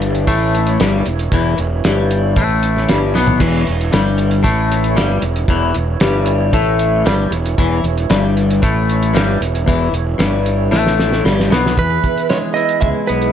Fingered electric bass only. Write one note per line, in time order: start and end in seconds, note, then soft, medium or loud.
0.00 0.25 G1 medium
0.28 0.76 A1 loud
0.80 1.04 G1 loud
1.06 1.31 E1 medium
1.32 1.57 E1 medium
1.59 1.83 E1 medium
1.85 2.34 G1 medium
2.37 2.85 A1 medium
2.90 3.14 G1 medium
3.17 3.40 B1 medium
3.41 3.65 E1 medium
3.68 3.92 E1 medium
3.94 4.42 G1 medium
4.45 4.94 A1 loud
4.96 5.21 G1 medium
5.22 5.47 E1 medium
5.49 5.74 E1 medium
5.76 6.00 E1 medium
6.01 6.50 G1 medium
6.54 7.02 A1 medium
7.06 7.30 G1 medium
7.31 7.56 E1 medium
7.58 7.83 E1 medium
7.84 8.08 E1 medium
8.10 8.59 G1 medium
8.64 9.12 A1 loud
9.15 9.39 G1 medium
9.41 9.65 E1 medium
9.68 9.92 E1 medium
9.93 10.17 E1 medium
10.19 10.68 G1 medium
10.71 11.20 A1 loud
11.25 11.49 G1 medium
11.51 11.75 B1 medium
11.78 11.98 E2 medium
12.82 12.92 C#2 loud
13.10 13.30 B1 medium